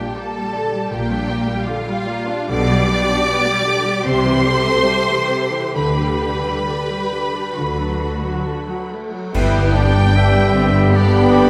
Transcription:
Already playing: A#2 G3 D4 G4 D5 G5
0.15 A#3 A4 A5 D6
0.34 G3 G5
0.53 D3 D5
0.72 G3 G4
0.91 A#1 A#2 A#3 G4 G5
1.09 G3 D4
1.27 A#3 D5
1.46 G3 G5
1.65 D3 F4 F5 D6
1.85 G3 G5
2.06 A#3 D5
2.27 D4 G4
2.48 B1 B2 D3 G4 D5 D6
2.69 G3
2.88 B3 D5
3.07 D4 G5
3.26 B3 D6
3.46 G3 G5
3.65 D3 D5
3.85 G3 G4
4.04 C2 C3 C5 C6
4.25 E3 G3
4.45 G3 A4
4.65 A3 E5
4.85 G3 A5
5.08 E3 E5
5.30 C3 A4
5.51 E3 E4
5.75 D2 D3 B4 B5
5.98 G3 D4
6.20 D3 G4
6.44 G3 G5
6.66 D3 D5
6.89 G3 G5
7.12 D3 G4
7.33 G3 D4
7.56 D2 D3 F#4
7.77 F#3 D4
8.00 A3 A4
8.23 F#3 F#5
8.46 D3 A5
8.69 F#3 F#5
8.92 A3 A4
9.12 F#3 F#4
9.33 G1 G2 D3 G3 B3 E4 G4 B4 G5, concert bass drum, crash
9.54 D3
9.74 B3 D4 D5
9.95 D4
10.14 D4 G4 B4 E5
10.34 B4
10.55 C4 D5
10.76 G5
10.90 B3 D4 G4 G5
10.95 D5 B5
11.14 G4
11.31 D4 F#4

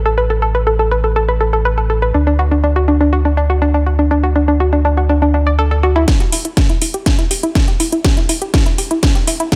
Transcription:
Already playing: A1
0.06 A4
0.18 B4
0.30 A4
0.42 A4
0.55 B4
0.67 A4
0.79 A4
0.91 B4
1.04 A4
1.16 A4
1.29 B4
1.41 A4
1.53 A4
1.65 B4
1.78 A4
1.90 A4
2.02 B4
2.14 D2 D4
2.27 D4
2.39 F#4
2.51 D4
2.64 D4
2.76 F#4
2.88 D4
3.01 D4
3.13 F#4
3.25 D4
3.37 D4
3.50 F#4
3.62 D4
3.74 D4
3.86 F#4
3.99 D4
4.11 D4
4.23 F#4
4.36 D4
4.48 D4
4.60 F#4
4.73 D4
4.85 D4
4.97 F#4
5.09 D4
5.22 D4
5.34 D4
5.47 D5
5.59 A4
5.71 A4
5.83 F#4
5.96 E4
6.08 E4, kick, snare, closed hi-hat
6.20 G4, closed hi-hat
6.32 E4, open hi-hat
6.45 E4, closed hi-hat
6.57 G4, kick, snare, closed hi-hat
6.69 E4, closed hi-hat
6.82 E4, open hi-hat
6.94 G4, closed hi-hat
7.06 E4, kick, snare, closed hi-hat
7.19 E4, closed hi-hat
7.31 G4, open hi-hat
7.43 E4, closed hi-hat
7.55 E4, kick, snare, closed hi-hat
7.68 G4, closed hi-hat
7.80 E4, open hi-hat
7.92 E4, closed hi-hat
8.04 G4, kick, snare, closed hi-hat
8.17 E4, closed hi-hat
8.29 E4, open hi-hat
8.42 G4, closed hi-hat
8.54 E4, kick, snare, closed hi-hat
8.66 E4, closed hi-hat
8.78 G4, open hi-hat
8.91 E4, closed hi-hat
9.03 E4, kick, snare, closed hi-hat
9.15 G4, closed hi-hat
9.27 E4, open hi-hat
9.40 E4, closed hi-hat
9.52 G4, kick, snare, closed hi-hat

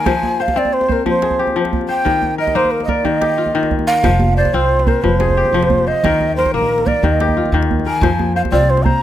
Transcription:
Already playing: D#3 A#3 D#4 F4 G4 A#4 G#5
0.06 F3 C5, djembe slap, djembe bass
0.23 djembe tone
0.40 C5 F5
0.48 djembe slap, djembe bass
0.56 C4 D5, djembe slap
0.65 djembe tone
0.73 C5
0.81 djembe slap
0.88 A#4 C5, djembe bass
1.06 F3 C5, djembe tone
1.22 G#4, djembe slap
1.31 djembe bass
1.39 G4
1.47 djembe tone
1.56 F3
1.65 djembe slap
1.73 djembe bass
1.81 djembe tone
1.89 C5 G5
2.05 D#3, djembe slap, djembe bass
2.23 djembe slap, djembe tone
2.38 A#4 D#5
2.47 djembe slap, djembe bass
2.55 A#3 D#4 C5
2.65 djembe tone
2.71 A#4, djembe slap
2.80 djembe slap
2.84 D#5, djembe bass
2.89 A#4 D5
3.05 D#3 D#5, djembe tone
3.21 G4, djembe slap
3.30 djembe slap
3.38 F4, djembe slap
3.46 djembe slap, djembe tone
3.55 D#3
3.63 djembe slap
3.71 djembe slap, djembe bass
3.79 djembe tone
3.87 A#4 F5
4.04 F1 F3 C5, djembe slap, djembe bass
4.20 djembe tone
4.37 C5 D5
4.45 djembe slap, djembe bass
4.53 C2 C4 F4 C5, djembe slap
4.79 djembe slap
4.87 A#4 C5, djembe bass
5.02 F1 F3 B4, djembe tone
5.18 G#4 C5, djembe slap
5.29 djembe bass
5.37 G4
5.46 djembe tone
5.53 F1 F3
5.62 djembe slap
5.70 djembe bass
5.78 djembe tone
5.87 C5 D#5
6.03 D#2 D#3 A#4, djembe slap, djembe bass
6.21 djembe tone
6.36 A#4 C5
6.46 djembe slap, djembe bass
6.54 A#1 A#3 A#4, djembe slap
6.62 djembe tone
6.78 djembe slap
6.87 A#4 D5, djembe bass
7.03 D#2 D#3 D#5, djembe tone
7.20 G4, djembe slap
7.28 djembe bass
7.37 F4
7.46 djembe tone
7.52 D#2 D#3
7.62 djembe slap
7.71 djembe bass
7.79 djembe tone
7.86 A#4 G#5
8.01 F2 F3 C5, djembe slap, djembe bass
8.19 djembe tone
8.36 C5 F5
8.45 djembe slap, djembe bass
8.52 C2 C4 F4 D5, djembe slap
8.61 djembe tone
8.70 C5
8.77 djembe slap
8.85 C5 A#5, djembe bass

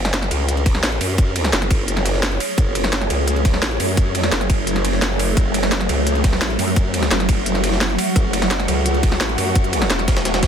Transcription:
Already playing: F#1 F#3 A3 G#4 C#5
0.05 snare, closed hi-hat
0.14 snare, closed hi-hat
0.22 snare, closed hi-hat
0.31 C#2, closed hi-hat, ride
0.48 closed hi-hat
0.57 closed hi-hat
0.66 kick, snare, closed hi-hat, ride
0.75 snare
0.83 A1, snare, closed hi-hat, open hi-hat
0.92 closed hi-hat
1.01 F#2, closed hi-hat, open hi-hat, ride
1.10 closed hi-hat
1.18 kick, closed hi-hat
1.36 closed hi-hat, ride
1.44 snare, closed hi-hat
1.53 F#1, snare, closed hi-hat
1.62 snare, closed hi-hat
1.71 kick, closed hi-hat, ride
1.88 closed hi-hat
1.97 snare, closed hi-hat
2.05 snare, closed hi-hat, ride
2.14 snare
2.23 snare, closed hi-hat, open hi-hat
2.32 closed hi-hat
2.40 closed hi-hat, open hi-hat, ride
2.58 F#1, kick, closed hi-hat
2.75 closed hi-hat, ride
2.84 snare, closed hi-hat
2.93 snare, closed hi-hat
3.01 snare, closed hi-hat
3.10 C#2, closed hi-hat, ride
3.28 closed hi-hat
3.36 closed hi-hat
3.45 kick, snare, closed hi-hat, ride
3.54 snare
3.62 A1, snare, closed hi-hat, open hi-hat
3.71 closed hi-hat
3.80 F#2, closed hi-hat, open hi-hat, ride
3.89 closed hi-hat
3.97 kick, closed hi-hat
4.15 closed hi-hat, ride
4.23 snare, closed hi-hat
4.32 F#1, snare, closed hi-hat
4.41 snare, closed hi-hat
4.50 kick, closed hi-hat, ride
4.67 closed hi-hat
4.76 snare, closed hi-hat
4.85 closed hi-hat, ride
4.93 snare
5.02 snare, closed hi-hat
5.19 closed hi-hat, open hi-hat, ride
5.37 F#1 F#4 F#5, kick, closed hi-hat
5.54 closed hi-hat, ride
5.63 snare, closed hi-hat
5.72 snare, closed hi-hat
5.80 snare, closed hi-hat
5.89 C#2, closed hi-hat, ride
6.07 closed hi-hat
6.15 closed hi-hat
6.24 kick, snare, closed hi-hat, ride
6.33 snare
6.42 A1, snare, closed hi-hat, open hi-hat
6.50 closed hi-hat
6.59 F#2, closed hi-hat, open hi-hat, ride
6.68 closed hi-hat
6.76 kick, closed hi-hat
6.94 closed hi-hat, ride
7.03 snare, closed hi-hat
7.11 F#1, snare, closed hi-hat
7.20 snare, closed hi-hat
7.29 kick, closed hi-hat, ride
7.46 closed hi-hat
7.55 snare, closed hi-hat
7.64 snare, closed hi-hat, ride
7.72 snare
7.81 snare, closed hi-hat, open hi-hat
7.90 closed hi-hat
7.99 closed hi-hat, open hi-hat, ride
8.16 F#1, kick, closed hi-hat
8.33 closed hi-hat, ride
8.42 snare, closed hi-hat
8.51 snare, closed hi-hat
8.60 snare, closed hi-hat
8.68 C#2, closed hi-hat, ride
8.86 closed hi-hat
8.94 closed hi-hat
9.03 kick, snare, closed hi-hat, ride
9.12 snare
9.21 A1, snare, closed hi-hat, open hi-hat
9.29 closed hi-hat
9.38 F#2, closed hi-hat, open hi-hat, ride
9.47 closed hi-hat
9.55 kick, closed hi-hat
9.64 closed hi-hat
9.73 closed hi-hat, ride
9.82 snare, closed hi-hat
9.90 E1, snare, closed hi-hat
9.99 snare, closed hi-hat
10.08 kick, snare, closed hi-hat, ride
10.17 snare, closed hi-hat
10.25 snare, closed hi-hat
10.34 snare, closed hi-hat
10.43 kick, snare, closed hi-hat, ride

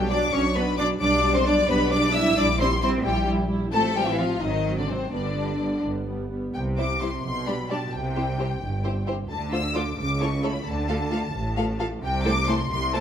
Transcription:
Already playing: B1 F#3 G3 D4 G4 G5
0.10 F#3 D4 D5 D6
0.33 B1 F#3 C#4 D4 C#5 C#6
0.55 F#3 B3 D4 B4 B5
0.78 F#3 D4 D5 D6
0.99 B1 G3 D4 D5 D6
1.24 G3 D4
1.34 C4 C5 C6
1.45 G3 D4 D5 D6
1.68 B1 G3 B3 D4 B4 B5
1.90 G3 D4 D5 D6
2.13 G3 D4 E4 E5 E6
2.36 A#1 G3 D4 E4 D5 D6
2.59 G3 C4 E4 C5 C6
2.81 G3 C4 E4 C5 C6
3.04 A#1 G3 E4 G4 G5
3.27 G3 E4
3.49 G3 E4
3.72 A1 F3 A3 C4 A4 A5
3.96 F3 G3 C4 G4 G5
4.08 E3 E4 E5
4.19 F3 C4 F4 F5
4.42 G#1 D#3 F#3 C4 D#4 D#5
4.66 F#3 C4
4.78 D3 D4 D5
4.89 C3 F#3 C4 C5
5.13 G1 D3 G3 B3 D4 D5
5.37 G3 B3
5.61 G3 B3
5.84 G1 G3 B3
6.08 G3 B3
6.31 G3 B3
6.55 C2 C3 G5
6.77 G3 E4 C5 D6
7.01 G3 E4 C5 C6
7.24 B1 B2 C6
7.47 G3 D4 G4 D5 B5
7.70 G3 D4 G4 D5 A5
7.93 C2 C3 G5
8.16 C4 E4 G4 C5
8.38 C4 E4 G4 C5
8.61 G1 G2
8.84 C4 E4 G4 C5
9.06 C4 E4 G4 C5
9.29 D2 D3 A5
9.52 A3 D4 F4 C5 E6
9.75 A3 D4 F4 C5 D6
9.97 C#2 C#3 D6
10.20 A3 E4 A4 C#5 C#6
10.43 A3 E4 A4 C#5 B5
10.65 D2 D3 A5
10.88 A3 F4 A4 F5
11.11 A3 F4 A4 F5
11.34 A1 A2
11.56 A3 F4 A4 F5
11.79 A3 F4 A4 F5
12.02 C2 C3 G5
12.25 A3 E4 A4 C5 D6
12.48 A3 E4 A4 C5 C6
12.70 C2 C3 C6
12.93 A3 E4 A4 C5 A5

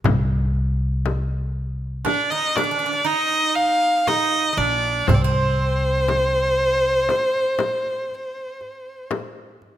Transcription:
0.04 C2, darbuka dum, frame drum
0.55 darbuka ka
1.06 darbuka tek, frame drum
2.05 D4 D5, darbuka tek, frame drum
2.30 D#4 D#5, darbuka ka
2.56 D4 D5, darbuka tek, frame drum
2.64 D4
2.71 D4
2.79 D4
2.86 D4
2.93 D4
3.05 D#4 D#5, darbuka ka
3.55 F5, darbuka ka
4.07 D#4 D#5, darbuka tek, frame drum
4.53 D#4
4.57 A#1 D4 D5, darbuka ka
5.07 C2 C4 C5, frame drum, darbuka dum
5.14 D5
5.22 C4 C5
5.60 darbuka ka
6.08 darbuka tek, frame drum
6.60 darbuka ka
7.09 darbuka tek, frame drum
7.35 darbuka ka
7.59 darbuka tek, frame drum
7.86 darbuka ka
8.11 darbuka ka
8.61 darbuka ka
9.11 darbuka tek, frame drum
9.62 darbuka ka

